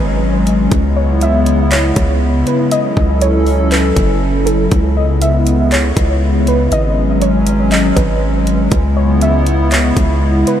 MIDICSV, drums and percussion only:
0, 0, Header, 1, 2, 480
1, 0, Start_track
1, 0, Key_signature, 4, "minor"
1, 0, Tempo, 500000
1, 688, Time_signature, 4, 2, 24, 8
1, 10176, End_track
2, 0, Start_track
2, 0, Title_t, "Drums"
2, 449, Note_on_c, 9, 42, 72
2, 545, Note_off_c, 9, 42, 0
2, 686, Note_on_c, 9, 42, 82
2, 687, Note_on_c, 9, 36, 107
2, 782, Note_off_c, 9, 42, 0
2, 783, Note_off_c, 9, 36, 0
2, 1166, Note_on_c, 9, 42, 76
2, 1262, Note_off_c, 9, 42, 0
2, 1405, Note_on_c, 9, 42, 78
2, 1501, Note_off_c, 9, 42, 0
2, 1646, Note_on_c, 9, 42, 71
2, 1651, Note_on_c, 9, 39, 105
2, 1742, Note_off_c, 9, 42, 0
2, 1747, Note_off_c, 9, 39, 0
2, 1884, Note_on_c, 9, 42, 82
2, 1885, Note_on_c, 9, 36, 98
2, 1980, Note_off_c, 9, 42, 0
2, 1981, Note_off_c, 9, 36, 0
2, 2369, Note_on_c, 9, 42, 71
2, 2465, Note_off_c, 9, 42, 0
2, 2606, Note_on_c, 9, 42, 82
2, 2702, Note_off_c, 9, 42, 0
2, 2850, Note_on_c, 9, 36, 89
2, 2946, Note_off_c, 9, 36, 0
2, 3086, Note_on_c, 9, 42, 72
2, 3182, Note_off_c, 9, 42, 0
2, 3326, Note_on_c, 9, 46, 61
2, 3422, Note_off_c, 9, 46, 0
2, 3569, Note_on_c, 9, 42, 68
2, 3573, Note_on_c, 9, 39, 108
2, 3665, Note_off_c, 9, 42, 0
2, 3669, Note_off_c, 9, 39, 0
2, 3806, Note_on_c, 9, 36, 94
2, 3807, Note_on_c, 9, 42, 80
2, 3902, Note_off_c, 9, 36, 0
2, 3903, Note_off_c, 9, 42, 0
2, 4289, Note_on_c, 9, 42, 70
2, 4385, Note_off_c, 9, 42, 0
2, 4526, Note_on_c, 9, 42, 80
2, 4527, Note_on_c, 9, 36, 111
2, 4622, Note_off_c, 9, 42, 0
2, 4623, Note_off_c, 9, 36, 0
2, 5007, Note_on_c, 9, 42, 77
2, 5103, Note_off_c, 9, 42, 0
2, 5247, Note_on_c, 9, 42, 77
2, 5343, Note_off_c, 9, 42, 0
2, 5489, Note_on_c, 9, 42, 67
2, 5494, Note_on_c, 9, 39, 108
2, 5585, Note_off_c, 9, 42, 0
2, 5590, Note_off_c, 9, 39, 0
2, 5727, Note_on_c, 9, 36, 98
2, 5728, Note_on_c, 9, 42, 81
2, 5823, Note_off_c, 9, 36, 0
2, 5824, Note_off_c, 9, 42, 0
2, 6213, Note_on_c, 9, 42, 69
2, 6309, Note_off_c, 9, 42, 0
2, 6449, Note_on_c, 9, 42, 87
2, 6545, Note_off_c, 9, 42, 0
2, 6927, Note_on_c, 9, 42, 77
2, 7023, Note_off_c, 9, 42, 0
2, 7167, Note_on_c, 9, 42, 82
2, 7263, Note_off_c, 9, 42, 0
2, 7409, Note_on_c, 9, 42, 70
2, 7414, Note_on_c, 9, 39, 106
2, 7505, Note_off_c, 9, 42, 0
2, 7510, Note_off_c, 9, 39, 0
2, 7647, Note_on_c, 9, 36, 100
2, 7648, Note_on_c, 9, 42, 78
2, 7743, Note_off_c, 9, 36, 0
2, 7744, Note_off_c, 9, 42, 0
2, 8131, Note_on_c, 9, 42, 73
2, 8227, Note_off_c, 9, 42, 0
2, 8367, Note_on_c, 9, 36, 112
2, 8367, Note_on_c, 9, 42, 81
2, 8463, Note_off_c, 9, 36, 0
2, 8463, Note_off_c, 9, 42, 0
2, 8846, Note_on_c, 9, 42, 74
2, 8942, Note_off_c, 9, 42, 0
2, 9086, Note_on_c, 9, 42, 76
2, 9182, Note_off_c, 9, 42, 0
2, 9329, Note_on_c, 9, 42, 70
2, 9334, Note_on_c, 9, 39, 113
2, 9425, Note_off_c, 9, 42, 0
2, 9430, Note_off_c, 9, 39, 0
2, 9567, Note_on_c, 9, 36, 94
2, 9568, Note_on_c, 9, 42, 76
2, 9663, Note_off_c, 9, 36, 0
2, 9664, Note_off_c, 9, 42, 0
2, 10052, Note_on_c, 9, 42, 71
2, 10148, Note_off_c, 9, 42, 0
2, 10176, End_track
0, 0, End_of_file